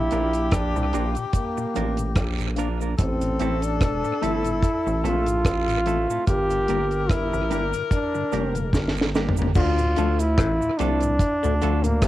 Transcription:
Already playing: E4 G4
0.11 A#1 F3 A#3 D4 F4 A#4, closed hi-hat, cabasa
0.33 closed hi-hat, cabasa
0.51 A#1 D4, kick, cross-stick, closed hi-hat, cabasa
0.76 C2 A#2, muted clean electric guitar stroke, cabasa
0.93 A#1 F3 A#3 D4 F4 A#4, closed hi-hat, cabasa
1.15 A#2, closed hi-hat, cabasa
1.33 A#3, kick, closed hi-hat, cabasa
1.57 A#2, muted clean electric guitar stroke, cabasa
1.74 A1 F3 A#3 D4 F4 A#4, closed hi-hat, cabasa
1.97 A#2, closed hi-hat, cabasa
2.15 A#1, kick, cross-stick, closed hi-hat, cabasa, long guiro
2.38 A#2, closed hi-hat, cabasa
2.56 F3 A#3 D4 F4 A#4, closed hi-hat, cabasa
2.80 A#3 D4 F4 A#4, cabasa
2.98 A1 C4 A4, kick, closed hi-hat, cabasa
3.21 A2, closed hi-hat, cabasa
3.39 A1 E3 A3 C4 E4 A4, closed hi-hat, cabasa
3.62 D4, closed hi-hat, cabasa
3.81 E1, kick, cross-stick, closed hi-hat, cabasa
4.04 A2, muted clean electric guitar stroke, cabasa
4.21 G1 E3 A3 C4 E4 A4, closed hi-hat, cabasa
4.44 A2, closed hi-hat, cabasa
4.63 kick, closed hi-hat, cabasa
4.86 A1 A2, muted clean electric guitar stroke, cabasa
5.04 A#1 E3 A3 C4 E4 F4 A4, closed hi-hat, cabasa
5.26 A2, closed hi-hat, cabasa
5.45 A1, kick, cross-stick, closed hi-hat, cabasa, long guiro
5.68 A2, closed hi-hat, cabasa
5.86 E3 A3 C4 E4 A4, closed hi-hat, cabasa
6.09 A2 A3 C4 E4 A4, cabasa
6.27 G1 G4 A#4, kick, closed hi-hat, cabasa
6.50 G2 D3, closed hi-hat, cabasa
6.68 G1 G3 A#3 D4 G4 A#4, closed hi-hat, cabasa
6.91 closed hi-hat, cabasa
7.09 G1 E4, kick, cross-stick, closed hi-hat, cabasa
7.33 A1 G2 D3, muted clean electric guitar stroke, cabasa
7.50 G1 G3 A#3 D4 G4 A#4, closed hi-hat, cabasa
7.73 G2 D3, closed hi-hat, cabasa
7.91 D4, kick, closed hi-hat, cabasa
8.15 G2 D3, muted clean electric guitar stroke, cabasa
8.32 F1 G3 A#3 D4 G4 A#4, closed hi-hat, cabasa
8.55 G2 D3, closed hi-hat, cabasa
8.73 G1, kick, snare, cabasa, long guiro
8.88 snare
8.97 G2 D3, cabasa
9.01 snare
9.15 G3 A#3 D4 G4 A#4, snare, cabasa
9.29 floor tom
9.37 A#3 D4 G4 A#4, cabasa
9.42 floor tom
9.55 D2 D3 F4, kick, crash, cabasa
9.79 D2 A2, closed hi-hat, cabasa
9.96 D2 D3 F3 A3 D4 F4 A4, closed hi-hat, cabasa
10.19 E4, closed hi-hat, cabasa
10.38 A1 A2, kick, cross-stick, closed hi-hat, cabasa
10.62 D2 A2, cabasa
10.78 C2 C3 F3 A3 D4 F4 A4, closed hi-hat, cabasa
11.01 D2 A2, closed hi-hat, cabasa
11.19 kick, closed hi-hat, cabasa
11.43 D2 A2 D3, cabasa
11.62 D2 D3 F3 A3 D4 F4 A4, closed hi-hat, cabasa
11.83 D2 A2 A#3, closed hi-hat, cabasa
12.02 C2 C3, kick, cross-stick, closed hi-hat, cabasa

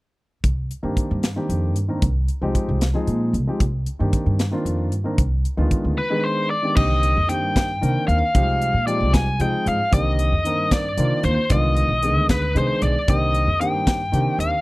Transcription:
0.44 C2, kick, closed hi-hat
0.71 closed hi-hat
0.83 G2 D#3 A#3 C4 D4 G4
0.97 kick, closed hi-hat
1.11 G2
1.23 snare, closed hi-hat
1.36 D#3 A#3 C4 D4 G4
1.49 F2, closed hi-hat
1.75 G2, closed hi-hat
1.88 D#3 A#3 C4 D4 A#4
2.02 C2, kick, closed hi-hat
2.28 closed hi-hat
2.41 C2 F3 G#3 C4 D#4 G4
2.55 kick, closed hi-hat
2.69 C2
2.81 snare, closed hi-hat
2.94 F3 G#3 C4 D#4 G#4
3.07 A#2, closed hi-hat
3.33 C2, closed hi-hat
3.47 F3 G#3 C4 D#4 G4
3.60 C2, kick, closed hi-hat
3.86 closed hi-hat
3.99 G2 D#3 A#3 C4 D4 G4
4.13 kick, closed hi-hat
4.26 G2
4.39 snare, closed hi-hat
4.51 D#3 A#3 C4 D4 F4
4.65 F2, closed hi-hat
4.91 G2, closed hi-hat
5.04 D#3 A#3 C4 D4 A#4
5.18 C2, kick, closed hi-hat
5.45 closed hi-hat
5.57 D2 D#3 G#3 B3 D4 F4
5.71 kick, closed hi-hat
5.84 D2
5.98 B4
6.10 D#3 G#3 B3 D4 G#4
6.24 C5
6.50 D5
6.62 D#3 G#3 B3 D4 G4
6.75 C2 D3 D#3 A#3 C4 G4 D#5, kick, crash
7.03 closed hi-hat
7.17 F2
7.28 D#3 A#3 C4 D4 G4 G5, closed hi-hat
7.42 G2
7.56 kick, snare, closed hi-hat
7.81 C3 D#3 A#3 C4 D4 A#4, closed hi-hat
8.08 D#2 F5, closed hi-hat
8.34 C2 F3 G#3 C4 D#4 G4, kick, closed hi-hat
8.62 closed hi-hat
8.74 A#2
8.86 F3 G#3 C4 D#4 G4 D5, closed hi-hat
9.01 C2
9.13 G#5, kick, snare, closed hi-hat
9.39 C3 F3 G#3 C4 D#4 G#4 G5, closed hi-hat
9.66 G#2 F5, closed hi-hat
9.91 C2 D3 D#3 A#3 C4 G4 D#5, kick, closed hi-hat
10.19 closed hi-hat
10.32 F2
10.45 D#3 A#3 C4 D4 A#4, closed hi-hat
10.57 G2
10.71 D5, kick, snare, closed hi-hat
10.97 C3 D#3 A#3 C4 D4 F4, closed hi-hat
11.23 D#2 C5, closed hi-hat
11.49 C2 D3 D#3 G#3 B3 F4 D#5, kick, closed hi-hat
11.77 closed hi-hat
11.89 B1
12.02 D#3 G#3 B3 D4 G#4, closed hi-hat
12.15 D2
12.29 B4, kick, snare, closed hi-hat
12.55 C3 D#3 G#3 B3 D4 G#4 C5, closed hi-hat
12.82 B1 D5, closed hi-hat
13.08 C2 D3 D#3 A#3 C4 G4 D#5, kick, closed hi-hat
13.35 closed hi-hat
13.47 F2
13.60 D#3 A#3 C4 D4 G4 G5, closed hi-hat
13.73 G2
13.87 kick, snare, closed hi-hat
14.12 C3 D#3 A#3 C4 D4 G4, closed hi-hat
14.39 D#2 F5, closed hi-hat

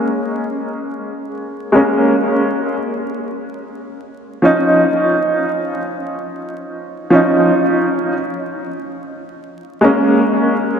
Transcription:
Already playing: G#3 A#3 C#4
1.72 G#3 A#3 C#4
4.42 F3 C#4 D#4
7.10 F3 C#4 D#4
9.81 G#3 A#3 C#4

